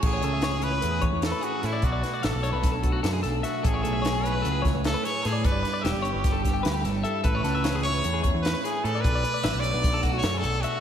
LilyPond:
<<
  \new Staff \with { instrumentName = "Clean electric guitar" } { \time 9/8 \key a \major \tempo 4. = 100 a'16 cis''16 a'16 e''16 cis''16 gis'16 cis''16 b'16 a'16 gis'16 cis''8 r16 b'16 gis'8 a'16 d''16~ | d''16 d''16 b'16 d''16 e''16 d''16 cis''16 b'8 a'16 fis'16 fis'16 a'16 gis'16 a'8 e''8 | a'16 cis''16 a'16 e''16 cis''16 gis'16 cis''16 b'16 a'16 gis'16 cis''8 r16 b'16 gis'8 a'16 d''16~ | d''16 d''16 b'16 d''16 e''16 d''16 cis''16 b'8 a'16 g'16 g'16 b'16 g'16 a'8 e''8 |
a'16 cis''16 a'16 e''16 cis''16 gis'16 cis''16 b'16 a'16 gis'16 cis''8 r16 b'16 gis'8 a'16 d''16~ | d''16 d''16 b'16 d''16 e''16 d''16 cis''16 b'8 a'16 fis'16 fis'16 a'16 gis'16 a'8 e''8 | }
  \new Staff \with { instrumentName = "Trumpet" } { \time 9/8 \key a \major gis'4. b'4 r8 a'8 fis'8 e'8 | fis'4 a'2 r4 fis'8 | gis'4. b'4 r8 a'8 cis''8 gis'8 | b'4 g'2 r4 a'8 |
b'4. cis''4 r8 b'8 gis'8 a'8 | b'4. d''4 r8 cis''8 a'8 fis'8 | }
  \new Staff \with { instrumentName = "Clean electric guitar" } { \time 9/8 \key a \major << { r8 cis'4 e'4 cis'8 e'8 cis'4 | r8 a4 d'4 a8 d'8 a4~ | a8 a4 e'4 a8 e'8 a4 | r8 b4 e'4 b8 cis'16 e'16 a16 b8. |
r8 cis'4 e'4 cis'8 e'8 cis'4 | r8 a4 d'4 a8 d'8 a4 | } \\ { <a, e>4 e4 e2 a,8 | b,4 fis4 fis2 b,8 | a,4 fis4 fis2 a,8 | g,4 g4 g2 g,8 |
a,4 e4 e2 a,8 | b,4 fis4 fis2 b,8 | } >> }
  \new Staff \with { instrumentName = "Picked electric bass" } { \clef bass \time 9/8 \key a \major a,,8 cis,4. e,8 e,16 e,8 r8. a,8 | b,,8 r8 a,,16 b,,8 b,,4~ b,,16 fis,8 b,,8 r8 | a,,8 b,,4. cis,8 cis,16 cis,8 r8. a,8 | g,,8 r8 e,,16 g,,8 g,,4~ g,,16 d,8 g,,8 r8 |
a,,8 cis,4. e,8 e,16 e,8 r8. a,8 | b,,8 r8 a,,16 b,,8 b,,4~ b,,16 fis,8 b,,8 r8 | }
  \new DrumStaff \with { instrumentName = "Drums" } \drummode { \time 9/8 <cymc bd>8 hh8 <hh sn>8 hh8 hh8 <hh bd>8 <hh sn>8 hh8 <hh sn>8 | <hh bd>8 <hh sn>8 <hh sn>8 hh8 <hh bd sn>8 <hh bd>8 <hh sn>8 <hh sn>8 <hh sn>8 | <hh bd>8 hh8 <hh sn>8 hh8 hh8 <hh bd sn>8 <hh sn>8 <hh sn>8 <hh sn>8 | <hh bd>8 <hh sn>8 <hh sn>8 hh8 <hh bd sn>8 <hh bd sn>8 <hh sn>8 <hh sn>8 hh8 |
<hh bd>8 <hh sn>8 <hh sn>8 <hh sn>8 hh8 <hh bd>8 <hh sn>8 <hh sn>8 hh8 | <hh bd>8 hh8 <hh sn>8 hh8 <hh bd sn>8 <hh bd sn>8 <hh sn>8 hh8 hh8 | }
>>